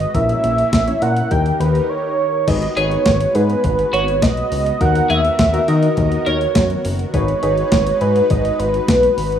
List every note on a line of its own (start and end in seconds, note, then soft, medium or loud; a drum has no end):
0.00 0.12 G#3 medium
0.00 0.11 F#4 medium
0.00 0.12 B4 medium
0.00 0.16 D#5 loud
0.00 closed hi-hat soft
0.15 0.35 A#1 loud
0.15 1.30 A#3 medium
0.15 0.54 C#4 medium
0.15 1.30 C#4 medium
0.15 0.54 E4 medium
0.15 1.30 E4 medium
0.15 0.54 A#4 medium
0.15 1.04 E5 loud
0.15 kick loud
0.15 closed hi-hat medium
0.29 closed hi-hat medium
0.44 0.64 A#1 loud
0.44 closed hi-hat medium
0.58 closed hi-hat medium
0.73 0.93 A#1 medium
0.73 kick loud
0.73 snare loud
0.73 closed hi-hat medium
0.88 0.96 C#4 medium
0.88 0.95 E4 medium
0.88 0.96 C#5 medium
0.88 closed hi-hat medium
1.02 1.22 A#2 loud
1.02 1.31 C#4 medium
1.02 1.31 E4 medium
1.02 1.30 A#4 medium
1.02 1.33 F#5 loud
1.02 closed hi-hat medium
1.16 closed hi-hat medium
1.31 1.52 D#2 loud
1.31 2.47 D#3 medium
1.31 2.24 D#4 medium
1.31 2.47 D#4 medium
1.31 2.24 G4 medium
1.31 2.47 G4 medium
1.31 2.24 A#4 medium
1.31 2.47 A#4 medium
1.31 1.60 G5 loud
1.31 kick loud
1.31 closed hi-hat medium
1.46 closed hi-hat soft
1.60 1.81 D#2 loud
1.60 1.91 B4 medium
1.60 closed hi-hat medium
1.75 closed hi-hat soft
1.89 2.49 C#5 medium
2.47 2.68 G#1 loud
2.47 4.78 G#3 medium
2.47 7.10 B3 medium
2.47 2.63 D#4 medium
2.47 9.39 F#4 medium
2.47 2.63 G#4 medium
2.47 4.78 B4 loud
2.47 2.63 B4 medium
2.47 2.78 D#5 loud
2.47 kick loud
2.47 closed hi-hat medium
2.47 crash loud
2.62 closed hi-hat medium
2.77 2.97 G#1 loud
2.77 3.08 D#4 medium
2.77 3.08 G#4 medium
2.77 2.87 G#4 medium
2.77 3.08 B4 medium
2.77 3.37 C#5 loud
2.77 closed hi-hat medium
2.91 closed hi-hat medium
3.06 3.26 G#1 loud
3.06 kick loud
3.06 snare loud
3.06 closed hi-hat medium
3.21 closed hi-hat medium
3.35 3.56 G#2 loud
3.35 3.98 D#4 medium
3.35 3.98 G#4 medium
3.35 3.64 B4 medium
3.35 3.98 B4 medium
3.35 closed hi-hat medium
3.50 closed hi-hat medium
3.64 3.85 G#1 loud
3.64 3.95 B4 medium
3.64 kick loud
3.64 closed hi-hat medium
3.79 closed hi-hat soft
3.93 4.24 G#1 loud
3.93 4.03 F#4 medium
3.93 4.24 C#5 medium
3.93 closed hi-hat medium
4.08 closed hi-hat soft
4.22 4.43 B1 loud
4.22 4.83 D#5 loud
4.22 kick loud
4.22 snare loud
4.22 closed hi-hat medium
4.37 closed hi-hat medium
4.52 4.72 C#2 loud
4.52 open hi-hat medium
4.66 closed hi-hat medium
4.81 5.01 D#2 loud
4.81 7.12 D#3 medium
4.81 5.20 D#4 medium
4.81 5.20 F#4 medium
4.81 5.20 A#4 medium
4.81 7.12 A#4 loud
4.81 5.12 F#5 loud
4.81 kick loud
4.81 closed hi-hat medium
4.95 closed hi-hat medium
5.10 5.30 D#2 loud
5.10 5.20 G#4 medium
5.10 5.70 E5 loud
5.10 closed hi-hat medium
5.25 closed hi-hat soft
5.39 5.59 D#2 loud
5.39 kick loud
5.39 snare loud
5.39 closed hi-hat medium
5.53 5.61 D#4 medium
5.53 5.61 F#4 medium
5.53 5.61 A#4 medium
5.53 closed hi-hat medium
5.68 5.89 D#3 loud
5.68 6.31 D#4 medium
5.68 6.31 F#4 medium
5.68 6.31 A#4 medium
5.68 5.97 D#5 loud
5.68 closed hi-hat medium
5.83 closed hi-hat medium
5.97 6.18 D#2 loud
5.97 6.28 D#5 loud
5.97 kick loud
5.97 closed hi-hat medium
6.12 closed hi-hat soft
6.26 6.47 D#2 loud
6.26 6.37 A#4 medium
6.26 6.85 C#5 loud
6.26 closed hi-hat medium
6.41 closed hi-hat soft
6.55 6.76 F#2 loud
6.55 kick loud
6.55 snare loud
6.55 closed hi-hat medium
6.70 closed hi-hat soft
6.85 7.05 F#1 loud
6.85 open hi-hat medium
6.99 closed hi-hat medium
7.14 7.34 G#1 loud
7.14 9.39 G#3 medium
7.14 9.39 D#4 medium
7.14 7.30 D#4 medium
7.14 7.30 G#4 medium
7.14 9.39 B4 medium
7.14 7.30 B4 medium
7.14 8.03 C#5 medium
7.14 kick loud
7.14 closed hi-hat medium
7.28 closed hi-hat medium
7.43 7.63 G#1 loud
7.43 7.74 D#4 medium
7.43 7.74 G#4 medium
7.43 7.74 B4 medium
7.43 closed hi-hat medium
7.58 closed hi-hat medium
7.72 7.92 G#1 loud
7.72 kick loud
7.72 snare loud
7.72 closed hi-hat medium
7.87 closed hi-hat medium
8.01 8.22 G#2 loud
8.01 8.64 D#4 medium
8.01 8.64 G#4 medium
8.01 8.64 B4 medium
8.01 8.32 B4 medium
8.01 closed hi-hat medium
8.16 closed hi-hat medium
8.30 8.51 G#1 loud
8.30 8.61 D#5 loud
8.30 kick loud
8.30 closed hi-hat medium
8.45 closed hi-hat soft
8.59 8.80 G#1 loud
8.59 9.39 B4 loud
8.59 closed hi-hat medium
8.74 closed hi-hat soft
8.88 9.09 B1 medium
8.88 kick loud
8.88 snare loud
8.88 closed hi-hat medium
9.03 closed hi-hat medium
9.18 9.38 G#1 loud
9.18 open hi-hat medium
9.32 closed hi-hat medium